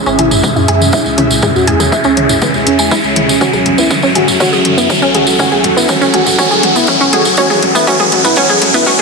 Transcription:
Already playing: C#4 E4 G#4 E5, riser
0.06 G#1 G#3 C#4, tambourine
0.19 G#1 E4 G#4, closed hi-hat, mid tom
0.31 G#1 G#3, mid tom, tambourine
0.43 G#3, kick, mid tom, tambourine
0.56 F#2 C#4 E4, tambourine
0.68 F#2 G#3 G#4, closed hi-hat
0.81 F#2 G#3, mid tom, tambourine
0.93 D4 E5, kick, tambourine
1.05 C#2 G#3, tambourine
1.18 C#2 C#4 E4, closed hi-hat, mid tom
1.30 C#2 G#3, tambourine
1.42 G#3 G#4, kick, mid tom, tambourine
1.55 E2 F#4, tambourine
1.67 E2 G#3 G#4, closed hi-hat, mid tom
1.80 E2 G#3 G#4, mid tom, tambourine
1.92 E5, kick, tambourine
2.04 C#2 G#3 C#4, tambourine
2.17 C#2 G#3 C#4, closed hi-hat, mid tom
2.29 C#2 C#4, mid tom, tambourine
2.42 G#3 B3, kick, mid tom, tambourine
2.54 C#2 G#3, tambourine
2.67 E2 C#4, closed hi-hat
2.79 E2 G#3 G#4, tambourine
2.91 G#3 E4, kick, tambourine
3.04 C#2 G#3, tambourine
3.16 C#2 G#3, closed hi-hat, mid tom
3.29 C#2 G#3, tambourine
3.41 C#4 F#4 A4, kick, mid tom, tambourine
3.53 C#2 F#3 G#4, tambourine
3.66 C#2 F#3, closed hi-hat, mid tom
3.78 C#2 B3 E4, tambourine
3.87 F#3 C#4 A4, kick, mid tom, tambourine
4.02 G#1 F#3 C#4, tambourine
4.09 F#5
4.15 G#1 F#4 G#4, closed hi-hat, mid tom
4.28 G#1 F#3, mid tom, tambourine
4.40 C#4 F#4, kick, mid tom, tambourine
4.53 F#2 F#3 G#4, tambourine
4.65 F#2 F#3, closed hi-hat, mid tom
4.77 F#2 B3 E4, tambourine
4.90 F#3 C#4, kick, mid tom, tambourine
5.02 C#2 F#3 C#4, tambourine
5.14 C#2 F#4 G#4, closed hi-hat, mid tom
5.27 C#2 F#3, tambourine
5.39 C#4 F#4, kick, mid tom, tambourine
5.52 E2 F#3 G#4, tambourine
5.64 E2 F#3, closed hi-hat, mid tom
5.77 E2 B3 E4, tambourine
5.89 F#3 C#4, kick, mid tom, tambourine
6.01 C#2 F#3 C#4, tambourine
6.14 C#2 F#4 G#4, closed hi-hat, mid tom
6.26 C#2 F#3, mid tom, tambourine
6.38 C#4 F#4, kick, mid tom, tambourine
6.51 C#2 F#3 G#4, tambourine
6.63 C#2 F#3, closed hi-hat, mid tom
6.76 C#2 B3 E4, tambourine
6.87 F#3 C#4, kick, mid tom, tambourine
7.01 C#2 F#3 C#4, tambourine
7.13 C#2 F#4 G#4, closed hi-hat, mid tom
7.25 C#2 F#3, tambourine
7.37 C#4 F#4, kick, mid tom, tambourine
7.50 C#2 F#3 G#4, mid tom, tambourine
7.62 C#2 F#3, closed hi-hat, mid tom
7.75 C#2 B3 E4, mid tom, tambourine
7.87 C#4 F#4, kick, mid tom, tambourine
8.00 G#1 F#3 G#4, mid tom, tambourine
8.12 G#1 F#3, closed hi-hat, mid tom
8.24 G#1 B3 E4, mid tom, tambourine
8.36 C#4 F#4, kick, mid tom, tambourine
8.49 F#2 F#3 G#4, mid tom, tambourine
8.62 F#2 F#3, closed hi-hat, mid tom
8.74 F#2 B3 E4, mid tom, tambourine
8.86 C#4 F#4, kick, mid tom, tambourine
8.99 F#3, tambourine

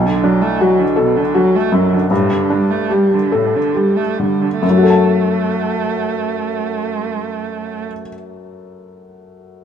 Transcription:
Already playing: B1
0.06 D3
0.23 F#3 D4
0.42 A3
0.61 F#3 F#4
0.80 D3
0.96 B2 A4
1.17 D3
1.34 F#3 F#4
1.56 A3
1.72 F#2 F#3
1.93 D3
2.11 G2 A2
2.33 D3
2.50 G3 D4
2.70 A3
2.90 G4
2.94 G3
3.15 D3
3.32 A2 A4
3.56 D3
3.74 G3 G4
3.96 A3
4.19 D3 G3
4.42 D3
4.61 F#2 A3
4.70 F#3
4.77 F#4
4.83 A4
4.90 A5

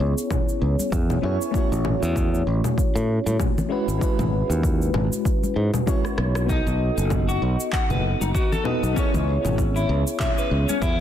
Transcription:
Already playing: B3 C#4 E4 G#4 C#5
0.00 C#2
0.18 cabasa
0.31 kick, low conga, cabasa
0.49 cabasa
0.62 C#2
0.79 high conga, cabasa
0.92 E2, kick, cabasa
1.10 low conga, cabasa
1.22 F#2 B3 C#4 E4 G#4 C#5
1.42 cabasa
1.51 A3 C#4 E4, kick, cabasa
1.56 F#4 C#5
1.72 A1, cabasa
1.85 low conga
2.03 E2, cabasa
2.16 kick, cabasa
2.34 cabasa
2.47 A1
2.64 low conga, cabasa
2.78 kick, cabasa
2.95 A2, cabasa
3.26 A2, high conga, cabasa
3.40 kick, low conga, cabasa
3.58 low conga, cabasa
3.69 G#3 C#4 E4 F#4 B4
3.88 G#1, cabasa
3.98 G#3 C#4 E4, kick
4.02 F#4 B4, cabasa
4.19 G#1, low conga, cabasa
4.50 D#2, cabasa
4.63 kick, cabasa
4.82 cabasa
4.94 G#1, low conga
5.13 cabasa
5.25 kick, cabasa
5.43 high conga, cabasa
5.56 G#2
5.74 high conga, low conga, cabasa
5.86 G#3 C#4 E4 F#4 C#5, kick, cabasa
6.05 cross-stick, cabasa
6.18 B1, cross-stick
6.35 cross-stick, cabasa
6.46 B3 D#4 F#4, kick, cabasa
6.51 A4 D#5
6.67 B1, cabasa
6.98 F#1, cabasa
7.10 kick, low conga, cabasa
7.29 F#4, cabasa
7.42 B1
7.60 cabasa
7.73 F#5, kick, clap, cabasa
7.90 F#1 B4, low conga, cabasa
8.21 F#1 D#4, high conga, cabasa
8.35 F#4, kick, cabasa
8.52 A4, low conga, cabasa
8.64 B3 D#4 F#4 A4 B4 D#5, low conga
8.83 B1, cabasa
8.93 B3 C#4 E4, kick, cabasa
8.98 G#4 C#5
9.14 C#2, low conga, cabasa
9.45 G#1, low conga, cabasa
9.58 kick, cabasa
9.76 E4, cabasa
9.89 C#2
10.07 cabasa
10.20 E5, kick, clap, low conga, cabasa
10.38 B4, cabasa
10.51 C#2
10.69 C#4, high conga, cabasa
10.82 E2 E4, kick, cabasa

